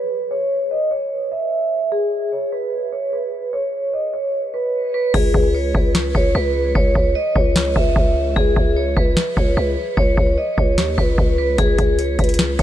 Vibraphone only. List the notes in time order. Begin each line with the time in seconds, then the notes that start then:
Already playing: B4
0.31 C#5
0.71 D#5
0.91 C#5
1.32 E5
1.92 G#4
2.32 C#5
2.52 B4
2.92 C#5
3.13 B4
3.53 C#5
3.94 D#5
4.14 C#5
4.54 B4
4.94 B4
5.14 G#4
5.55 C#5
5.75 B4
6.15 C#5
6.35 B4
6.75 C#5
7.15 D#5
7.36 C#5
7.76 E5
8.36 G#4
8.76 C#5
8.97 B4
9.37 C#5
9.57 B4
9.97 C#5
10.38 D#5
10.58 C#5
10.98 B4
11.38 B4
11.58 G#4
11.99 C#5
12.19 B4
12.59 C#5